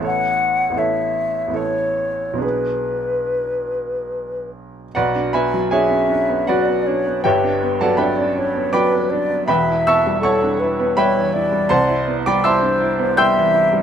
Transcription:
<<
  \new Staff \with { instrumentName = "Flute" } { \time 3/4 \key a \major \tempo 4 = 79 fis''4 e''4 cis''4 | b'2~ b'8 r8 | r4 e''4 d''8 cis''8 | b'4 d''8 cis''8 b'8 d''8 |
e''4 a'8 b'8 cis''8 d''8~ | d''8 r8 c''4 e''4 | }
  \new Staff \with { instrumentName = "Grand piano" } { \time 3/4 \key a \major <a,, b e' a' cis''>4 <a,, b e' a' cis''>4 <a,, b e' a' cis''>4 | <b,, b d' gis' b'>2. | <fis' b' d'' fis''>8 <b' e'' gis'' b''>8 <gis' cis'' e'' gis''>4 <fis' b' d'' fis''>4 | <g' cis'' e'' g''>8. <a' d'' fis'' a''>16 <b' e'' g'' b''>4 <d'' g'' b'' d'''>4 |
<b' e'' g'' b''>8 <e'' a'' cis''' e'''>8 <cis'' fis'' a'' cis'''>4 <b' e'' g'' b''>4 | <c'' fis'' a'' c'''>8. <d'' g'' b'' d'''>16 <e'' a'' c''' e'''>4 <g'' c''' e''' g'''>4 | }
  \new Staff \with { instrumentName = "Grand piano" } { \time 3/4 \key a \major r2. | r2. | b,,16 d'16 b16 fis16 d'16 cis'16 d'16 b16 fis16 b16 d'16 b16 | <g,, g,>16 d'16 b16 fis16 d'16 cis'16 d'16 b16 fis16 b16 d'16 b16 |
<e,, e,>16 e'16 b16 g16 e'16 d'16 e'16 b16 g16 e16 e'16 g16 | c,16 e'16 b16 g16 e'16 d'16 e'16 b16 g16 e16 e'16 g16 | }
>>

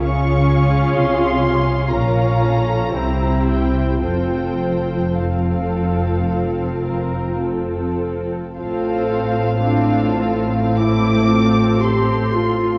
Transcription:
<<
  \new Staff \with { instrumentName = "Violin section" } { \time 4/4 \key f \major \tempo 4 = 56 des'''4 c'''4 bes''4. g''8 | g''4 f''2 r4 | f''2 d'''4 c'''4 | }
  \new Staff \with { instrumentName = "Violin section" } { \time 4/4 \key f \major << { f''2 f''4 c''4 | c''4 a'4. bes'8 a'4 | c''4 a'2. | } \\ { aes'2 bes'8 a'8 g'4 | a'4 r2. | a'4 f'4 a'2 | } >> }
  \new Staff \with { instrumentName = "Viola section" } { \time 4/4 \key f \major << { f'2 f'4 e'4 | f'4 f'2. | f'4 c'4 e'8 f'8 g'8 f'8 | } \\ { des'2 des'4 c'4 | c'4 c'2. | c'4 d'8 c'2~ c'8 | } >> }
  \new Staff \with { instrumentName = "Cello section" } { \clef bass \time 4/4 \key f \major des4 c4 bes,4 c4 | f,1 | a,1 | }
  \new Staff \with { instrumentName = "Double bass section" } { \clef bass \time 4/4 \key f \major des,4 c,4 bes,,4 c,4 | f,,1 | a,,1 | }
>>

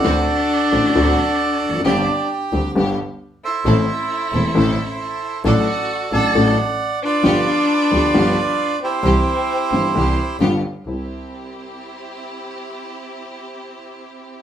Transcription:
<<
  \new Staff \with { instrumentName = "Bandoneon" } { \time 4/4 \key c \major \tempo 4 = 133 << { d''1 | d''4 r2 r8 e''8~ | e''1 | fis''4. a''4 r4 d''8~ |
d''2.~ d''8 c''8~ | c''2. r4 | r1 | r1 | } \\ { <fis' a'>1 | g'2 r4. <a' c''>8~ | <a' c''>1 | <a' d''>4. <d'' fis''>2 <f' b'>8~ |
<f' b'>2.~ <f' b'>8 <e' g'>8~ | <e' g'>2. r4 | r1 | r1 | } >> }
  \new Staff \with { instrumentName = "String section" } { \time 4/4 \key c \major <c' d' fis'>8 r4 <c' d' fis'>8 <c' d' fis'>8 r4. | <c' d' g'>8 r4 <c' d' g'>8 <b d' g'>8 r4. | <c' e' a'>8 r4 <c' e' a'>8 <c' e' a'>8 r4. | <d' fis' a'>8 r4 <d' fis' a'>8 <d' fis' a'>8 r4. |
<b f' g'>8 r4 <b f' g'>8 <b f' g'>8 r4. | <c' e' g'>8 r4 <c' e' g'>8 <c' e' g'>8 r8 <b f' g'>8 r8 | <c' e' g'>1~ | <c' e' g'>1 | }
  \new Staff \with { instrumentName = "Violin" } { \time 4/4 \key c \major d'1 | d'4 r2 r8 e'8~ | e'1 | fis'4. a'4 r4 d'8~ |
d'2.~ d'8 c'8~ | c'2. r4 | r1 | r1 | }
  \new Staff \with { instrumentName = "Upright piano" } { \clef bass \time 4/4 \key c \major <d, d a c' fis'>8 r4 <a,, a, d a c' fis'>8 <d, d a c' fis'>8 r4 r32 e,32 f,32 fis,32 | <g,, g, d g c' g'>8 r4 <d, d g c' g'>8 <g,, g, d g b g'>8 r4. | <a,, a, e a c' a'>8 r4 <e,, e, e a c' a'>8 <a,, a, e a c' a'>8 r4. | <a,, a, fis a d' a'>8 r4 <a,, a, fis a d' a'>8 <a,, a, fis a d' a'>8 r4. |
<g,, g, f b d' g'>8 r4 <d, d f b d' g'>8 <g,, g, f b d' g'>8 r4. | <c, c e g c' g'>8 r4 <g,, g, e g c' g'>8 <c, c e g c' g'>8 r8 <g,, g, d g b f'>8 r8 | <c, g c' e'>1~ | <c, g c' e'>1 | }
  \new Staff \with { instrumentName = "Double bass" } { \clef bass \time 4/4 \key c \major d,8 r4 a,,8 d,8 r4 f,,8 | g,,8 r4 d,8 g,,8 r4. | a,,8 r4 e,,8 a,,8 r4. | a,,8 r4 a,,8 a,,8 r4. |
g,,8 r4 d,8 g,,8 r4. | c,8 r4 g,,8 c,8 r8 g,,8 r8 | c,8 r2. r8 | r1 | }
>>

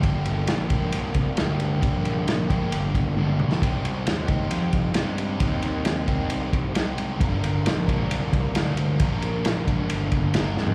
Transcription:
<<
  \new Staff \with { instrumentName = "Overdriven electric guitar" } { \time 4/4 \key g \minor \tempo 4 = 134 <g, d g bes d' g'>4. <g, d g bes d' g'>4. <g, d g bes d' g'>4 | <g, d g bes d' g'>4. <g, d g bes d' g'>4. <g, d g bes d' g'>4 | <c g c' ees' g'>4. <c g c' ees' g'>4. <c g c' ees' g'>4 | <c g c' ees' g'>4. <c g c' ees' g'>4. <c g c' ees' g'>4 |
<g, d g bes d' bes'>4. <g, d g bes d' bes'>4. <g, d g bes d' bes'>4 | <g, d g bes d' bes'>4. <g, d g bes d' bes'>4. <g, d g bes d' bes'>4 | }
  \new Staff \with { instrumentName = "Picked electric bass" } { \clef bass \time 4/4 \key g \minor g,,8 g,,8 bes,,8 bes,,8 c,8 c,8 d,8 d,8 | bes,,8 bes,,8 bes,,8 bes,,8 g,,8 g,,8 g,,8 bes,,8 | c,8 c,8 ees,8 ees,8 f,8 f,8 g,8 g,8 | ees,8 ees,8 ees,8 ees,8 c,8 c,8 c,8 c,8 |
g,,8 g,,8 bes,,8 bes,,8 c,8 c,8 d,8 d,8 | bes,,8 bes,,8 bes,,8 bes,,8 g,,8 g,,8 g,,8 f,8 | }
  \new DrumStaff \with { instrumentName = "Drums" } \drummode { \time 4/4 <bd cymr>8 cymr8 <cymr sn>8 <bd cymr>8 cymr8 <bd cymr>8 <cymr sn>8 cymr8 | <bd cymr>8 cymr8 <cymr sn>8 <bd cymr>8 cymr8 <bd cymr>8 tommh8 toml16 sn16 | <bd cymr>8 cymr8 <cymr sn>8 <bd cymr>8 cymr8 <bd cymr>8 <cymr sn>8 cymr8 | <bd cymr>8 cymr8 <cymr sn>8 <bd cymr>8 cymr8 <bd cymr>8 <cymr sn>8 cymr8 |
<bd cymr>8 cymr8 <cymr sn>8 <bd cymr>8 cymr8 <bd cymr>8 <cymr sn>8 cymr8 | <bd cymr>8 cymr8 <cymr sn>8 <bd cymr>8 cymr8 <bd cymr>8 <cymr sn>8 sn16 tomfh16 | }
>>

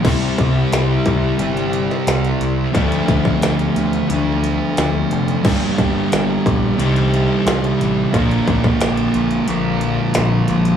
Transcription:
<<
  \new Staff \with { instrumentName = "Distorted electric guitar" } { \clef bass \time 4/4 \key c \dorian \tempo 4 = 89 <c g c' e'>1 | <d f a d'>1 | <g, d g bes d'>2 <c g c' ees'>2 | <bes, d f bes d'>1 | }
  \new Staff \with { instrumentName = "Distorted electric guitar" } { \clef bass \time 4/4 \key c \dorian <c g c'>2 <c g c'>2 | <d a d'>2 <d a d'>2 | <g, d g>2 <c g c'>2 | <bes, f bes>2 <bes, f bes>2 | }
  \new Staff \with { instrumentName = "Picked electric bass" } { \clef bass \time 4/4 \key c \dorian c,8 c,8 c,8 c,8 g,,4 c,8 c,8 | d,8 d,8 d,8 d,8 d,4 d,8 f,,8 | g,,8 g,,8 g,,8 bes,,8 c,4 c,8 a,,8 | bes,,8 bes,,8 bes,,8 bes,,8 bes,,4 bes,,8 bes,,8 | }
  \new DrumStaff \with { instrumentName = "Drums" } \drummode { \time 4/4 <cymc bd>8 <hh bd>8 <hh sn>8 <hh bd>8 hh16 hh16 hh16 sn16 <hh sn>16 hh16 hh8 | <hh bd>16 hh16 <hh bd>16 bd16 <hh sn>16 hh16 hh16 hh16 hh8 hh8 <hh sn>8 hh16 hh16 | <cymc bd>8 <hh bd>8 <hh sn>8 <hh bd>8 hh16 hh16 hh8 <hh sn>16 hh16 hh8 | <hh bd>16 hh16 <hh bd>16 bd16 <hh sn>16 hh16 hh16 hh16 hh8 hh8 <hh sn>8 hh16 hh16 | }
>>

